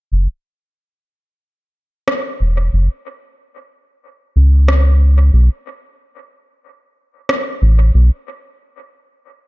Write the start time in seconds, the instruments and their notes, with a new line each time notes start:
0.12 analog synth bass F#1
2.08 cross-stick
2.40 analog synth bass E1
2.73 analog synth bass F#1
4.36 analog synth bass C#2
4.68 cross-stick
5.33 analog synth bass B1
7.29 cross-stick
7.62 analog synth bass A1
7.94 analog synth bass B1